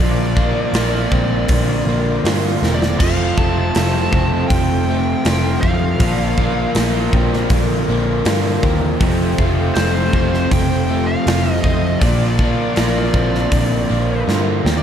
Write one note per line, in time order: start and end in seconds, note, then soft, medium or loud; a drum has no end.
0.00 0.63 A#1 loud
0.00 1.87 A#2 medium
0.00 2.97 A#2 medium
0.00 1.49 F3 medium
0.00 1.50 F3 medium
0.00 3.00 F3 loud
0.00 2.98 A#3 loud
0.00 2.99 D4 loud
0.00 0.37 F4 medium
0.00 0.74 F4 medium
0.00 2.97 A#4 medium
0.00 2.19 D5 medium
0.00 2.97 D5 medium
0.00 8.96 F5 medium
0.00 8.96 C6 medium
0.36 1.88 A#3 medium
0.36 3.39 F4 medium
0.36 kick medium
0.73 1.06 A#1 medium
0.73 1.87 A#3 medium
0.73 2.24 F4 medium
0.73 snare loud
0.73 open hi-hat medium
1.11 1.44 A#1 medium
1.11 4.15 C4 medium
1.11 2.63 C4 medium
1.11 kick medium
1.48 1.81 A#1 medium
1.48 2.24 D3 medium
1.48 3.00 D3 medium
1.48 kick loud
1.48 open hi-hat medium
1.86 2.18 A#1 medium
1.86 3.00 A#3 medium
1.86 2.63 A#3 medium
2.24 2.56 G2 medium
2.24 3.00 D3 medium
2.24 3.78 F4 medium
2.24 snare loud
2.24 open hi-hat medium
2.62 2.94 E1 medium
2.62 3.01 A#3 medium
2.62 4.13 C4 medium
2.62 snare medium
2.74 2.99 D5 medium
2.82 snare medium
2.99 3.31 F1 medium
2.99 5.98 F2 loud
2.99 4.88 F2 medium
2.99 5.98 C3 loud
2.99 6.01 F3 loud
2.99 4.52 F3 medium
2.99 5.99 A3 loud
2.99 6.02 C4 loud
2.99 5.98 A4 medium
2.99 5.98 C5 medium
2.99 3.38 F5 loud
2.99 kick loud
2.99 crash loud
3.37 3.69 F1 medium
3.37 4.89 A3 medium
3.37 6.39 F4 medium
3.37 4.48 A5 loud
3.37 kick medium
3.75 4.07 F1 medium
3.75 4.87 A3 medium
3.75 5.27 F4 medium
3.75 snare loud
3.75 open hi-hat medium
4.12 4.44 F1 medium
4.12 5.63 C4 medium
4.12 6.05 C4 medium
4.12 kick medium
4.48 5.14 F1 medium
4.48 5.25 F3 medium
4.48 5.65 G5 medium
4.48 kick loud
4.48 open hi-hat medium
4.53 7.51 F3 medium
4.88 6.01 A3 medium
4.88 5.65 A3 medium
5.25 5.57 F1 medium
5.25 7.51 F3 medium
5.25 6.75 F4 medium
5.25 snare loud
5.25 open hi-hat medium
5.61 5.95 F2 medium
5.61 6.04 C4 medium
5.61 6.71 F5 medium
5.61 kick medium
5.66 6.02 A3 medium
5.99 6.64 A#1 medium
5.99 8.98 A#2 medium
5.99 7.89 A#2 medium
5.99 9.02 F3 loud
5.99 9.00 A#3 loud
5.99 9.00 D4 loud
5.99 8.99 A#4 medium
5.99 8.99 D5 medium
5.99 kick loud
5.99 open hi-hat medium
6.38 7.89 A#3 medium
6.38 9.38 F4 medium
6.38 kick medium
6.75 7.07 A#1 medium
6.75 7.88 A#3 medium
6.75 8.27 F4 medium
6.75 snare loud
6.75 open hi-hat medium
7.13 7.45 A#1 medium
7.13 8.63 C4 medium
7.13 10.15 C4 medium
7.13 kick loud
7.33 snare soft
7.50 7.83 A#1 medium
7.50 8.25 D3 medium
7.50 9.02 D3 medium
7.50 kick loud
7.50 open hi-hat medium
7.88 8.20 A#1 medium
7.88 9.01 A#3 medium
7.88 8.64 A#3 medium
8.25 8.57 G2 medium
8.25 9.01 D3 medium
8.25 9.77 F4 medium
8.25 snare loud
8.25 open hi-hat medium
8.63 8.95 D#2 medium
8.63 9.02 A#3 medium
8.63 10.14 C4 medium
8.63 kick medium
9.00 9.33 F1 medium
9.00 11.99 F2 loud
9.00 10.89 F2 medium
9.00 10.90 F2 medium
9.00 12.00 C3 loud
9.00 12.02 F3 loud
9.00 12.00 A3 loud
9.00 12.04 C4 loud
9.00 11.99 A4 medium
9.00 11.99 C5 medium
9.00 14.83 F5 medium
9.00 14.83 C6 medium
9.00 kick loud
9.00 open hi-hat medium
9.38 9.70 F1 medium
9.38 10.88 A3 medium
9.38 12.38 F4 medium
9.38 kick medium
9.74 10.08 F1 loud
9.74 10.88 A3 medium
9.74 11.27 F4 medium
9.74 10.53 C5 loud
9.74 snare loud
9.74 open hi-hat medium
10.13 10.46 F1 medium
10.13 11.64 C4 medium
10.13 12.07 C4 medium
10.13 kick medium
10.34 snare soft
10.51 11.15 F1 medium
10.51 11.26 F3 medium
10.51 13.53 F3 medium
10.51 11.10 G5 loud
10.51 kick loud
10.51 open hi-hat medium
10.89 12.02 A3 medium
10.89 11.65 A3 medium
11.06 11.62 F5 loud
11.27 11.59 F1 medium
11.27 13.51 F3 medium
11.27 12.79 F4 medium
11.27 snare loud
11.27 open hi-hat medium
11.62 11.96 F2 medium
11.62 12.03 A3 medium
11.62 12.05 C4 medium
11.62 12.00 D#5 medium
11.62 kick medium
12.00 12.65 A#1 loud
12.00 14.83 A#2 loud
12.00 13.90 A#2 medium
12.00 13.91 A#2 medium
12.00 14.83 F3 medium
12.00 14.83 A#3 loud
12.00 14.83 A#4 medium
12.00 14.23 D5 medium
12.00 14.83 D5 medium
12.00 kick loud
12.00 open hi-hat medium
12.04 14.83 D4 loud
12.39 13.89 A#3 medium
12.39 14.27 F4 medium
12.39 kick medium
12.75 13.09 A#1 medium
12.75 13.88 A#3 medium
12.75 snare loud
12.75 open hi-hat medium
12.80 14.27 F4 medium
13.13 13.46 A#1 medium
13.13 14.64 C4 medium
13.13 14.83 C4 medium
13.13 kick medium
13.35 snare soft
13.52 13.84 A#1 medium
13.52 14.26 D3 medium
13.52 14.83 D3 medium
13.52 kick loud
13.52 open hi-hat medium
13.89 14.22 A#1 medium
13.89 14.83 A#3 medium
13.89 14.65 A#3 medium
14.27 14.60 G2 medium
14.27 14.83 D3 medium
14.27 14.83 F4 medium
14.27 snare medium
14.65 14.83 D#2 medium
14.65 14.83 A#3 medium
14.65 14.83 C4 medium
14.65 snare loud
14.77 14.83 D5 medium